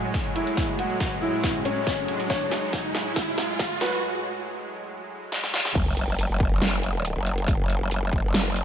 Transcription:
Already playing: A2 F#3 G#3 F#4 C#5 G#5, riser
0.14 kick, snare, closed hi-hat
0.36 E4, closed hi-hat
0.47 closed hi-hat
0.57 kick, snare, closed hi-hat
0.79 F#4, closed hi-hat
1.00 kick, snare, closed hi-hat
1.22 E4
1.44 kick, snare, closed hi-hat
1.65 C#4, closed hi-hat
1.87 kick, snare, closed hi-hat
2.08 closed hi-hat
2.20 closed hi-hat
2.30 C#5, kick, snare, closed hi-hat
2.52 snare, closed hi-hat
2.73 kick, snare, closed hi-hat
2.95 snare
3.16 kick, snare, closed hi-hat
3.38 snare, closed hi-hat
3.59 kick, snare, closed hi-hat
3.81 B4, snare, closed hi-hat
3.92 closed hi-hat
5.32 snare
5.44 snare
5.54 snare
5.65 snare
5.75 F#1, kick, closed hi-hat, crash, sub drop
5.97 closed hi-hat
6.19 F#1, closed hi-hat
6.30 F#1
6.40 kick
6.52 F#1
6.62 snare, closed hi-hat
6.83 closed hi-hat
7.05 closed hi-hat
7.16 F#1
7.26 closed hi-hat
7.38 closed hi-hat
7.48 kick, closed hi-hat
7.59 F#1
7.70 closed hi-hat
7.81 F#1
7.91 closed hi-hat
8.13 kick
8.24 F#1
8.34 snare, closed hi-hat
8.56 closed hi-hat

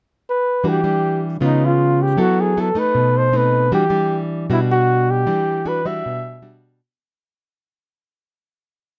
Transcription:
0.30 B4
0.64 E3 G3 D4 F#4
0.68 G4
0.84 G3 D4
1.41 C#3 G#3 B3 F4
1.45 D#4
1.65 F4
2.02 G4
2.17 F#3 B3 E4 F#4 A4
2.41 G#4
2.57 B3 E4 A4
2.75 A3 D#4 B4
2.95 B2
3.17 C5
3.33 A3 C4 D#4 B4
3.72 E3 G3 D4 F#4 G4
3.90 G3 D4
4.50 B2 G3 D4 E4 F#4
4.71 F#4
5.11 G4
5.26 E3 G3 D4
5.65 G3 D4 F#4 B4
5.85 G3 D4 F#4 E5
6.06 B2
6.42 G3 D4 F#4

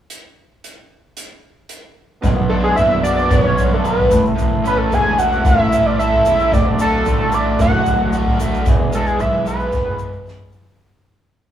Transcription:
0.10 closed hi-hat
0.64 closed hi-hat
1.17 closed hi-hat
1.69 closed hi-hat
2.21 B1 B2 B3 D4 F#4, kick, floor tom, shaker
2.49 D4 A4
2.64 G#4
2.76 F#1 B3 E5, floor tom, shaker
3.03 F#4 D5, shaker
3.18 shaker
3.29 B1 B3 C#5, kick, floor tom, shaker
3.58 D4, floor tom, shaker
3.73 A4
3.84 B4, shaker
3.98 floor tom
4.08 A1 A2 A3 E4 A4, kick, shaker
4.25 shaker
4.36 A1 A2, floor tom, shaker
4.65 C#4 B4, shaker
4.78 A4
4.90 E1 A3 G#5, floor tom, shaker
5.18 E4 F#5, shaker
5.33 shaker
5.45 A1 A3 E5, kick, floor tom, shaker
5.72 C#4, floor tom, shaker
5.86 D5
5.99 A4 E5, shaker
6.12 floor tom
6.25 E1 E4, shaker
6.40 shaker
6.52 D1 D2 D4 F#4 D5, kick, floor tom, shaker
6.79 D3 A4, shaker
7.06 A1 A2, floor tom, shaker
7.32 A3 D5, shaker
7.59 D1 A2 F#5, kick, floor tom, shaker
7.86 D3, floor tom, shaker
8.13 F#4, shaker
8.26 floor tom
8.40 D1 A3, shaker
8.54 shaker
8.66 E1 E2 G#3 B3 E4 G#4, kick, floor tom, shaker
8.93 G#3 A4, shaker
9.06 G#4, shaker
9.19 B1 E3 E5, floor tom, shaker
9.45 B3 B4, shaker
9.59 shaker
9.72 E1 E3, kick, floor tom, shaker
9.87 mid tom
9.99 G#3, floor tom, shaker
10.13 mid tom, shaker
10.26 E4, snare, shaker
10.40 floor tom, mid tom
10.51 B1 B3, shaker
10.66 shaker

